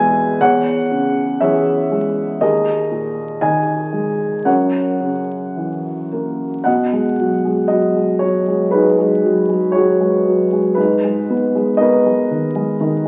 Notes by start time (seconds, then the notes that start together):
Already playing: E2 B2 E3 G#3 G#4 B4 E5 G#5
0.41 E2 C#5 F#5
0.91 C#3
1.40 E3 G#4 C#5 E5
1.91 G#3
2.41 D#2 G#4 A#4 D#5
2.91 A#2
3.41 D#3 D#5 G#5
3.93 G#3
4.45 F#2 A#4 C#5 F#5
5.00 C#3
5.56 E3
6.13 A#3
6.64 B2 D#5 F#5
6.92 G#3
7.18 F#3
7.45 G#3
7.68 F#3 D#5
7.96 G#3
8.19 F#3 C#5
8.48 G#3
8.71 F#3 D#4 G#4 B4
8.98 G#3
9.23 F#3
9.49 G#3
9.72 F#3 F#4 G#4 C#5
10.00 G#3
10.26 F#3
10.53 G#3
10.75 G#2 D#4 B4
11.04 G#3
11.30 B3
11.55 G#3
11.77 B3 B4 D#5
11.81 A#4
12.06 G#3
12.31 D#3
12.56 G#3
12.80 D#3